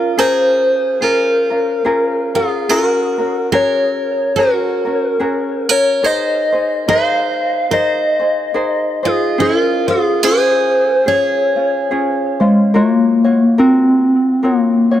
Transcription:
Already playing: C#4 F4 A#4
0.18 C#4 F4 G#4 A#4 C5
1.01 C#4 F4 G#4 A#4
1.50 C#4 F4 A#4
1.85 C#4 F4 G#4 A#4
2.35 C#4 F4 G#4 A#4
2.69 C#4 F#4 G#4 A#4
3.18 C#4 F#4 A#4
3.52 C#4 F#4 G#4 A#4 C#5
4.36 C#4 F#4 G#4 A#4
4.85 C#4 F#4 A#4
5.20 C#4 F#4 G#4 A#4
5.69 C#4 F#4 A#4 C#5
6.03 D#4 G#4 A#4 C5 D#5
6.52 D#4 G#4 C5
6.88 D#4 G#4 A#4 C5 F5
7.71 D#4 G#4 A#4 C5 D#5
8.19 D#4 G#4 C5
8.54 D#4 G#4 A#4 C5
9.03 D#4 F4 G#4 C5
9.38 C#4 E4 F4 G#4 A4 C5
9.58 F4 A#4
9.87 C#4 F4 G#4 C5
10.23 C#4 F4 G#4 C5
11.06 C#4 F4 G#4 C#5
11.56 C#4 F4
11.91 C#4 F4 G#4
12.40 G#3 C#4 F4 C5
12.74 A#3 F4 F#4 A#4 C#5
13.24 F4 F#4 C#5
13.58 C4 F4 F#4 A#4
14.43 A#3 F4 F#4 A#4 C#5
14.91 F4 F#4 C#5

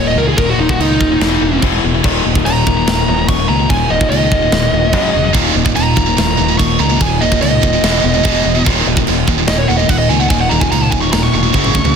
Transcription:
Already playing: D#1 D#2 A#2 D#3
0.08 D#5
0.16 C#2 D#2 A#2 A#4
0.28 D#2 A#2 G#4
0.38 D#1 D#2 A#2 D#3 A#4, kick, crash
0.49 F#4
0.58 D#1 D#2 A#2 D#4
0.69 D#2 A#2 F#4, kick
0.79 C#2 D#2 A#2 D#4, crash
1.01 D#1 D#2 A#2, kick
1.12 D#2 A#2
1.20 E1 E2 B2, snare, crash
1.24 E3
1.42 E1 E2 B2
1.53 E2 B2
1.62 E1 E2 B2 E3, kick, crash
1.84 E1 E2 B2
1.94 E2 B2
2.03 D#1 D#2 A#2 D#3, kick, crash
2.26 D#1 D#2 A#2
2.35 D#2 A#2, kick
2.46 D#1 D#2 A#2 A#5, crash
2.67 D#1 D#2 A#2, kick
2.77 D#2 A#2
2.87 D#1 D#2 A#2, snare, crash
3.08 D#1 D#2 A#2
3.18 D#2 A#2
3.28 D#1 D#2 A#2 C#6, kick, crash
3.49 C#2 D#2 A#2 A#5
3.59 D#2 A#2
3.69 D#1 D#2 A#2 D#3 G#5, kick, crash
3.90 D#1 D#2 A#2 D#5
4.01 D#2 A#2, kick
4.10 C#2 D#2 A#2 D#5, crash
4.32 D#1 D#2 A#2, kick
4.42 D#2 A#2
4.51 D#1 D#2 A#2, snare, crash
4.72 D#1 D#2 A#2
4.85 D#2 A#2
4.93 F#1 F#2 C#3 F#3, kick, crash
5.14 E1 F#2 C#3
5.24 F#2 C#3
5.33 D#1 D#2 A#2 D#3, kick, crash
5.54 D#1 D#2 A#2
5.64 D#2 A#2, kick
5.76 D#1 D#2 A#2 A#5, crash
5.97 D#1 D#2 A#2, kick
6.07 D#2 A#2
6.18 D#1 D#2 A#2, snare, crash
6.39 D#1 D#2 A#2
6.50 D#2 A#2
6.58 D#1 D#2 A#2 C#6, kick, crash
6.80 C#2 D#2 A#2 A#5
6.91 D#2 A#2
7.01 D#1 D#2 A#2 D#3 G#5, kick, crash
7.21 D#1 D#2 A#2 D#5
7.32 D#2 A#2, kick
7.42 C#2 D#2 A#2 D#5, crash
7.63 D#1 D#2 A#2, kick
7.75 D#2 A#2
7.83 E1 E2 B2 E3, snare, crash
8.03 E1 E2 B2
8.15 E2 B2
8.25 E1 E2 B2 E3, kick, crash
8.45 E1 E2 B2
8.57 E2 B2
8.66 D#1 D#2 A#2 D#3, kick, crash
8.86 D#1 D#2 A#2
8.97 D#2 A#2, kick
9.07 D#1 D#2 A#2, crash
9.27 D#1 D#2 A#2, kick
9.39 D#2 A#2
9.48 D#1 D#2 A#2 D#5, snare, crash
9.58 C#5
9.68 D#1 D#2 A#2 F#5
9.78 D#2 A#2 D#5
9.89 D#1 D#2 A#2 F#5, kick, crash
9.98 D#5
10.09 C#2 D#2 A#2 G#5
10.19 D#2 A#2 F#5
10.29 D#1 D#2 A#2 D#3 G#5, kick, crash
10.40 F#5
10.49 D#1 D#2 A#2 A#5
10.61 D#2 A#2 G#5, kick
10.71 C#2 D#2 A#2 A#5, crash
10.82 A5
10.91 D#1 D#2 A#2 G#5, kick
11.02 D#2 A#2 C#6
11.13 D#1 D#2 A#2 A#5, snare, crash
11.23 C#6
11.33 E1 D#2 A#2 C#6
11.45 D#2 A#2
11.54 F#1 F#2 C#3 F#3, kick, high tom
11.64 mid tom
11.73 D2 C#3, kick
11.78 F#2 C#3
11.85 F#2 C#3, floor tom

